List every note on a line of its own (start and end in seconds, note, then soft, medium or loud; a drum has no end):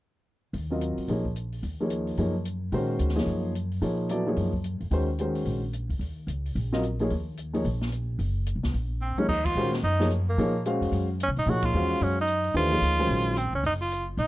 0.53 0.94 D#2 medium
0.53 open hi-hat soft
0.70 1.06 F#3 soft
0.70 1.06 C4 soft
0.70 1.07 F4 soft
0.70 1.07 A#4 soft
0.70 1.07 D#5 soft
0.81 closed hi-hat soft
0.98 muted upright bass stroke soft
0.98 open hi-hat soft
1.08 1.60 A#1 medium
1.08 1.24 F3 medium
1.08 1.24 A#3 soft
1.08 1.24 D#4 soft
1.08 1.24 G#4 soft
1.08 1.24 C#5 medium
1.08 open hi-hat soft
1.25 kick soft
1.36 closed hi-hat soft
1.52 open hi-hat soft
1.63 2.15 D#2 medium
1.63 open hi-hat soft
1.80 2.16 F3 soft
1.80 2.16 A#3 soft
1.80 2.16 D#4 soft
1.80 2.16 G#4 soft
1.80 2.17 C#5 medium
1.90 closed hi-hat soft
2.07 open hi-hat soft
2.17 2.69 F#2 medium
2.17 2.33 F3 soft
2.17 2.33 A#3 medium
2.17 2.33 D#4 soft
2.17 2.33 G#4 soft
2.17 2.34 C#5 medium
2.17 open hi-hat soft
2.45 closed hi-hat soft
2.72 2.98 A#2 medium
2.72 3.13 D#3 medium
2.72 3.13 G#3 soft
2.72 3.14 C#4 soft
2.72 3.13 F#4 medium
2.72 3.14 C5 medium
2.72 open hi-hat soft
2.99 3.25 D2 medium
2.99 closed hi-hat soft
3.09 snare soft
3.16 3.52 F3 medium
3.16 3.52 A#3 soft
3.16 3.52 D#4 medium
3.16 3.52 G#4 soft
3.16 3.52 C#5 medium
3.16 snare soft
3.16 open hi-hat soft
3.26 3.79 F#2 medium
3.26 open hi-hat soft
3.55 closed hi-hat soft
3.72 open hi-hat soft
3.81 4.33 A#2 medium
3.81 4.08 F3 medium
3.81 4.08 A#3 soft
3.81 4.08 D#4 soft
3.81 4.08 G#4 soft
3.81 4.08 C#5 medium
3.81 open hi-hat soft
4.09 4.24 F#3 medium
4.09 4.25 B3 soft
4.09 4.25 E4 soft
4.09 4.25 A4 soft
4.09 4.25 D5 medium
4.09 closed hi-hat soft
4.27 4.50 F3 medium
4.27 4.50 A#3 soft
4.27 4.50 D#4 soft
4.27 4.51 G#4 soft
4.27 4.51 C#5 medium
4.36 4.78 F#2 medium
4.36 open hi-hat soft
4.53 kick soft
4.64 closed hi-hat soft
4.80 4.90 F2 medium
4.80 open hi-hat soft
4.91 5.43 D#2 medium
4.91 5.06 D#3 medium
4.91 5.07 G#3 soft
4.91 5.07 C#4 soft
4.91 5.07 F#4 soft
4.91 5.07 C5 medium
4.91 open hi-hat soft
5.19 5.60 D#3 medium
5.19 5.60 G#3 soft
5.19 5.60 C#4 soft
5.19 5.60 F#4 soft
5.19 5.60 C5 medium
5.19 closed hi-hat soft
5.35 open hi-hat soft
5.45 5.87 A#1 medium
5.45 open hi-hat soft
5.73 closed hi-hat soft
5.89 5.99 D2 medium
5.89 open hi-hat soft
5.99 6.25 D#2 medium
5.99 open hi-hat soft
6.27 6.53 C#2 medium
6.27 closed hi-hat soft
6.46 open hi-hat soft
6.55 7.07 A#1 medium
6.55 open hi-hat soft
6.72 6.82 F#3 medium
6.72 6.82 C4 medium
6.72 6.82 F4 medium
6.72 6.82 A#4 medium
6.72 6.82 D#5 medium
6.72 snare soft
6.83 closed hi-hat soft
6.99 7.09 F3 medium
6.99 7.09 A#3 medium
6.99 7.10 D#4 soft
6.99 7.10 G#4 medium
6.99 7.10 C#5 medium
6.99 open hi-hat soft
7.10 7.62 D#2 medium
7.10 open hi-hat soft
7.37 closed hi-hat soft
7.53 7.63 F3 medium
7.53 7.63 A#3 soft
7.53 7.63 D#4 medium
7.53 7.64 G#4 medium
7.53 7.64 C#5 medium
7.53 open hi-hat soft
7.65 8.16 A#1 medium
7.65 open hi-hat soft
7.81 snare soft
7.92 closed hi-hat soft
8.19 8.53 F#1 medium
8.19 open hi-hat soft
8.46 closed hi-hat soft
8.56 8.64 A#1 medium
8.63 8.73 C#2 medium
8.63 snare soft
8.74 9.15 A#1 medium
8.74 open hi-hat soft
9.01 9.20 C4 medium
9.17 9.28 F3 soft
9.17 9.29 A#3 soft
9.17 9.28 C#4 medium
9.17 9.29 D#4 soft
9.17 9.29 G#4 soft
9.17 9.29 C#5 medium
9.17 muted upright bass stroke soft
9.17 high tom medium
9.29 9.54 D#2 medium
9.29 9.47 D#4 loud
9.29 kick medium
9.29 crash medium
9.45 9.72 F4 loud
9.45 kick medium
9.45 ride medium
9.55 9.81 A#2 medium
9.55 9.71 D#3 medium
9.55 9.71 G#3 soft
9.55 9.72 C#4 medium
9.55 9.72 F#4 medium
9.55 9.72 C5 medium
9.73 snare soft
9.73 open hi-hat soft
9.83 10.35 F#2 medium
9.83 10.09 D#4 loud
9.83 open hi-hat soft
10.00 10.09 F3 medium
10.00 10.09 A#3 medium
10.00 10.09 D#4 medium
10.00 10.10 G#4 medium
10.00 10.10 C#5 medium
10.00 snare soft
10.10 closed hi-hat soft
10.29 10.63 A#3 medium
10.37 10.78 A#2 medium
10.37 10.53 F3 medium
10.37 10.53 A#3 medium
10.37 10.53 D#4 medium
10.37 10.53 G#4 medium
10.37 10.53 C#5 medium
10.37 open hi-hat soft
10.65 11.06 G#3 medium
10.65 11.06 C#4 medium
10.65 11.06 F#4 medium
10.65 11.06 C5 medium
10.65 11.06 F5 medium
10.65 closed hi-hat medium
10.81 10.91 F2 medium
10.81 open hi-hat soft
10.92 11.25 F#2 medium
10.92 open hi-hat soft
11.20 11.30 C#4 medium
11.20 closed hi-hat soft
11.28 11.36 C#3 medium
11.36 11.45 A#2 medium
11.36 11.51 D#4 loud
11.36 open hi-hat soft
11.46 11.71 A#2 medium
11.46 11.73 F3 medium
11.46 11.73 A#3 soft
11.46 11.73 D#4 soft
11.46 11.67 F#4 loud
11.46 11.73 G#4 soft
11.46 11.74 C#5 medium
11.46 open hi-hat soft
11.63 12.05 F4 loud
11.63 kick medium
11.63 ride medium
11.74 11.99 E2 medium
11.74 12.14 G#3 medium
11.74 12.15 C#4 medium
11.74 12.15 F#4 medium
11.74 12.15 C5 soft
11.74 12.15 F5 medium
11.90 open hi-hat soft
12.01 12.52 F#2 medium
12.01 12.18 C#4 medium
12.01 open hi-hat soft
12.21 12.54 D#4 medium
12.27 closed hi-hat soft
12.44 open hi-hat soft
12.54 12.80 D#2 medium
12.54 12.70 E3 medium
12.54 12.70 A3 medium
12.54 12.70 D4 medium
12.54 13.39 F4 loud
12.54 12.70 G4 medium
12.54 12.70 C5 medium
12.54 open hi-hat soft
12.72 12.95 F3 soft
12.72 12.95 A#3 soft
12.72 12.96 D#4 soft
12.72 12.96 G#4 soft
12.72 12.96 C#5 medium
12.82 13.07 D2 medium
12.82 closed hi-hat medium
12.98 13.34 D#3 medium
12.98 13.34 F#3 soft
12.98 13.34 G#3 soft
12.98 13.35 C#4 soft
12.98 13.35 C5 medium
12.98 open hi-hat soft
13.09 13.50 A#1 medium
13.09 open hi-hat soft
13.37 13.53 C4 medium
13.37 closed hi-hat medium
13.53 13.63 C#2 medium
13.53 13.64 C#4 medium
13.63 14.15 F#1 medium
13.63 13.73 D#4 medium
13.63 open hi-hat soft
13.81 14.06 F4 medium
13.91 closed hi-hat medium
14.17 14.27 A#1 medium
14.17 14.27 D#4 loud
14.17 open hi-hat soft